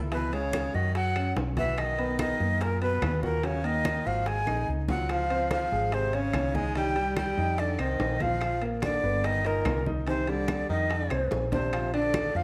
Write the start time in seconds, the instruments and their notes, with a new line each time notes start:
Already playing: fretless electric bass C#2
0.12 baritone saxophone B2, grand piano E3 E4, flute B4, high bongo, high conga, high timbale
0.32 baritone saxophone C#3, grand piano G#3 G#4, flute C#5, high conga, high timbale
0.53 high bongo, high conga, high timbale, low timbale, claves
0.74 fretless electric bass F#2, baritone saxophone D#3, grand piano F#4 F#5, flute D#5, high bongo, high conga
0.95 baritone saxophone F#3, flute F#5, high bongo, high conga, high timbale
1.16 grand piano C#4 C#5, high bongo, high conga, high timbale, claves
1.36 fretless electric bass B1, high bongo, low bongo, high conga, low timbale
1.57 baritone saxophone E3, grand piano F#4 F#5, flute E5, high conga, high timbale
1.77 baritone saxophone D#3, flute D#5, high bongo, high conga, high timbale, claves
1.98 grand piano B3 B4, high conga, high timbale
2.19 baritone saxophone D#3, flute D#5, high bongo, high conga, high timbale, low timbale, claves
2.40 fretless electric bass F#2, grand piano A#3 A#4, high bongo, high conga
2.61 baritone saxophone A#2, flute A#4, high bongo, high conga, high timbale
2.81 baritone saxophone B2, grand piano B3 B4, flute B4, high bongo, high conga, high timbale
3.02 fretless electric bass D#2, high bongo, low bongo, high conga, high timbale, low timbale, claves
3.23 baritone saxophone A#2, grand piano F#4 F#5, flute A#4, high bongo, high conga
3.43 baritone saxophone C#3, grand piano F#3 F#4, flute C#5, high bongo, high conga, high timbale
3.64 baritone saxophone D#3, grand piano A#3 A#4, flute D#5, high conga, high timbale
3.85 high bongo, high conga, high timbale, low timbale, claves
4.05 fretless electric bass G#1, baritone saxophone F3, grand piano F#4 F#5, flute F5, high bongo, high conga
4.26 baritone saxophone G#3, flute G#5, high bongo, high conga, high timbale
4.47 fretless electric bass A#1, grand piano D#4 D#5, high bongo, high conga, high timbale, claves
4.68 fretless electric bass C#2, high conga
4.88 baritone saxophone F#3, grand piano F4 F5, flute F#5, low bongo, high conga, low timbale
5.09 baritone saxophone F3, flute F5, high bongo, high conga, high timbale, claves
5.30 grand piano C4 C5, high conga, high timbale
5.51 baritone saxophone F3, flute F5, high bongo, high conga, high timbale, low timbale, claves
5.72 fretless electric bass G#1, grand piano G#3 G#4, high bongo, high conga
5.92 baritone saxophone C3, flute C5, high bongo, high conga, high timbale
6.13 baritone saxophone C#3, grand piano C#4 C#5, flute C#5, high bongo, high conga, high timbale
6.33 fretless electric bass C2, high bongo, low bongo, high conga, high timbale, low timbale, claves
6.55 baritone saxophone G#3, grand piano D#4 D#5, flute G#5, high bongo, high conga
6.75 grand piano D#3 D#4, baritone saxophone G3, flute G5, high bongo, high conga, high timbale
6.96 grand piano G3 G4, high conga, high timbale
7.16 baritone saxophone G3, flute G5, high bongo, high conga, high timbale, low timbale, claves
7.37 fretless electric bass F2, grand piano D#4 D#5, high bongo, high conga
7.58 baritone saxophone D3, flute D5, high bongo, high conga, high timbale
7.79 fretless electric bass C2, baritone saxophone D#3, grand piano C4 C5, flute D#5, high bongo, high conga, high timbale, claves
8.00 fretless electric bass A#1, high bongo, low bongo, high conga, low timbale
8.20 baritone saxophone F3, grand piano F4 F5, flute F5, high conga, high timbale
8.41 high bongo, high conga, high timbale, claves
8.62 grand piano A#3 A#4, high conga, high timbale
8.82 baritone saxophone D3, flute D5, high bongo, high conga, high timbale, low timbale, claves
9.03 fretless electric bass G1, grand piano B3 B4, high bongo, high conga
9.24 baritone saxophone D#3, flute D#5, high bongo, high conga, high timbale
9.45 baritone saxophone A#2, grand piano D#4 D#5, flute A#4, high bongo, high conga, high timbale
9.65 fretless electric bass C2, high bongo, low bongo, high conga, high timbale, low timbale, claves
9.86 grand piano D#4 D#5, high bongo, high conga
10.07 baritone saxophone C3, grand piano D#3 D#4, flute C5, high bongo, high conga, high timbale
10.27 baritone saxophone D3, grand piano G3 G4, flute D5, high conga, high timbale
10.48 high bongo, high conga, high timbale, low timbale, claves
10.69 fretless electric bass F2, baritone saxophone D#3, grand piano D#4 D#5, flute D#5, high bongo, high conga
10.90 high bongo, high conga, high timbale
11.10 fretless electric bass C2, grand piano C4 C5, high bongo, high conga, high timbale, claves
11.31 fretless electric bass A#1, high bongo, high conga, low timbale
11.52 baritone saxophone C3, grand piano D4 D5, flute C5, low bongo, high conga, high timbale
11.73 grand piano F3 F4 F5, high bongo, high conga, high timbale, claves
11.94 grand piano D3 D4 D5, baritone saxophone D3, flute D5, high conga, high timbale
12.14 high bongo, high conga, high timbale, low timbale, claves
12.35 fretless electric bass F2, baritone saxophone F3, grand piano F3 F4 F5, flute F5, high bongo, high conga